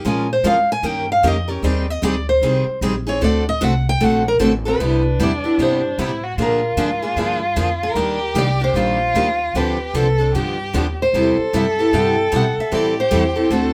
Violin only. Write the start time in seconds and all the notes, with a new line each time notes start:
4.80 D4
5.99 E4
6.24 F#4
6.39 F4
7.96 G4
8.76 F4
9.55 G4
9.94 A4
10.34 G4
11.14 A4
12.72 G4
13.51 A4